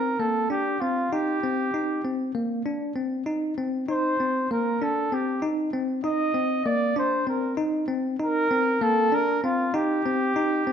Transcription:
0.00 0.16 C4 medium
0.00 0.21 A#4 medium
0.19 0.46 A#3 medium
0.19 0.50 A4 medium
0.50 0.77 D4 medium
0.50 0.82 G4 medium
0.80 1.08 C4 medium
0.80 1.14 F4 medium
1.12 1.39 D#4 medium
1.12 2.36 G4 medium
1.43 1.70 C4 medium
1.74 2.00 D#4 medium
2.05 2.31 C4 medium
2.35 2.61 A#3 medium
2.66 2.92 D4 medium
2.95 3.23 C4 medium
3.26 3.53 D#4 medium
3.58 3.85 C4 medium
3.88 4.15 D#4 medium
3.88 4.47 C5 medium
4.20 4.47 C4 medium
4.51 4.78 A#3 medium
4.51 4.84 A#4 medium
4.82 5.08 D4 medium
4.82 5.15 A4 medium
5.12 5.39 C4 medium
5.12 5.44 G4 medium
5.42 5.69 D#4 medium
5.73 6.00 C4 medium
6.04 6.31 D#4 medium
6.04 6.63 D#5 medium
6.34 6.62 C4 medium
6.65 6.93 A#3 medium
6.65 6.95 D5 medium
6.96 7.23 D4 medium
6.96 7.27 C5 medium
7.27 7.54 C4 medium
7.27 7.57 A#4 medium
7.57 7.85 D#4 medium
7.88 8.15 C4 medium
8.20 8.47 D#4 medium
8.20 8.84 A#4 medium
8.51 8.78 C4 medium
8.81 9.08 A#3 medium
8.81 9.16 A4 loud
9.12 9.39 D4 medium
9.12 9.43 A#4 loud
9.44 9.71 C4 medium
9.44 9.76 F4 medium
9.74 10.01 D#4 medium
9.74 10.73 G4 medium
10.06 10.32 C4 medium
10.36 10.63 D#4 medium
10.67 10.73 C4 medium

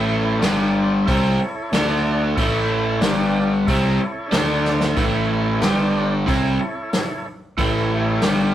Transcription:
0.00 0.39 A1 medium
0.00 0.42 A2 loud
0.00 0.43 E3 medium
0.00 0.42 A3 loud
0.00 0.41 E4 medium
0.00 0.41 A4 medium
0.00 0.41 C#5 medium
0.39 1.03 G1 medium
0.39 1.06 G2 medium
0.39 1.06 D3 medium
0.39 0.92 D4 medium
0.39 0.93 G4 medium
0.39 0.93 D5 medium
0.39 snare loud
0.39 open hi-hat soft
0.43 1.06 G3 loud
1.06 1.37 C2 medium
1.06 1.39 C3 medium
1.06 1.39 G3 medium
1.06 1.39 C4 medium
1.06 1.32 E4 medium
1.06 1.33 A4 medium
1.06 1.33 C#5 medium
1.06 kick loud
1.06 open hi-hat soft
1.38 1.71 E4 medium
1.38 1.70 A4 medium
1.38 1.72 C#5 medium
1.71 2.33 D2 medium
1.71 2.37 D3 medium
1.71 2.37 A3 medium
1.71 2.24 D4 medium
1.71 2.38 D4 loud
1.71 2.24 A4 medium
1.71 2.24 D5 medium
1.71 snare loud
1.71 open hi-hat soft
2.36 2.98 A1 medium
2.36 3.02 A2 medium
2.36 3.02 E3 loud
2.36 3.02 A3 medium
2.36 3.01 E4 medium
2.36 3.02 A4 medium
2.36 3.02 C#5 medium
2.36 kick medium
2.36 open hi-hat soft
3.01 3.63 G1 medium
3.01 3.66 G2 medium
3.01 3.67 D3 medium
3.01 3.67 G3 medium
3.01 3.53 D4 medium
3.01 3.53 G4 medium
3.01 3.53 D5 medium
3.01 snare loud
3.01 open hi-hat soft
3.66 3.97 C2 medium
3.66 3.99 C3 medium
3.66 3.99 G3 medium
3.66 4.00 C4 loud
3.66 3.93 E4 medium
3.66 3.93 A4 medium
3.66 3.93 C#5 medium
3.66 kick loud
3.66 open hi-hat medium
3.96 4.30 E4 medium
3.96 4.28 A4 medium
3.96 4.31 C#5 medium
4.28 4.96 D3 medium
4.28 4.96 A3 medium
4.28 4.82 D4 medium
4.28 4.83 A4 medium
4.28 4.83 D5 medium
4.32 4.93 D2 medium
4.32 4.96 D4 medium
4.32 snare loud
4.32 open hi-hat soft
4.65 snare soft
4.81 snare medium
4.94 5.58 A1 medium
4.94 5.61 A2 medium
4.94 5.61 E3 loud
4.94 5.61 E4 medium
4.94 5.61 A4 medium
4.94 5.61 C#5 medium
4.94 kick loud
4.94 open hi-hat soft
4.98 5.62 A3 loud
5.60 6.23 G1 medium
5.60 6.26 G2 medium
5.60 6.26 D3 medium
5.60 6.26 G3 medium
5.60 6.13 D4 medium
5.60 6.14 G4 medium
5.60 6.14 D5 medium
5.60 snare loud
5.60 open hi-hat soft
6.26 6.57 C2 medium
6.26 6.58 C3 medium
6.26 6.59 G3 medium
6.26 6.59 C4 medium
6.26 6.53 E4 medium
6.26 6.53 A4 medium
6.26 6.54 C#5 medium
6.26 kick loud
6.26 open hi-hat soft
6.59 7.27 E4 medium
6.59 7.27 A4 medium
6.59 7.27 C#5 medium
6.93 snare loud
6.93 open hi-hat soft
7.57 8.18 A1 medium
7.57 8.22 A2 medium
7.57 8.22 E3 medium
7.57 8.22 A3 loud
7.57 8.22 E4 medium
7.57 8.23 A4 medium
7.57 8.22 C#5 medium
7.57 kick medium
7.57 open hi-hat soft
8.21 8.54 G1 medium
8.21 8.54 G2 medium
8.21 8.54 D3 medium
8.21 8.54 G3 medium
8.21 8.54 D4 medium
8.21 8.54 G4 medium
8.21 8.54 D5 medium
8.21 snare loud
8.21 open hi-hat medium

